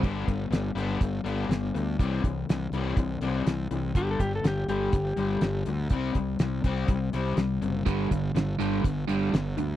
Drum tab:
CC |x-------|--------|--------|--------|
HH |-xxxxxxx|xxxxxxxx|xxxxxxxx|xxxxxxxx|
SD |--o---o-|--o---o-|--o---o-|--o---o-|
BD |oo--o---|oo--o---|oo--o---|oo-oo---|

CC |--------|
HH |xxxxxxxx|
SD |--o---o-|
BD |oo--o---|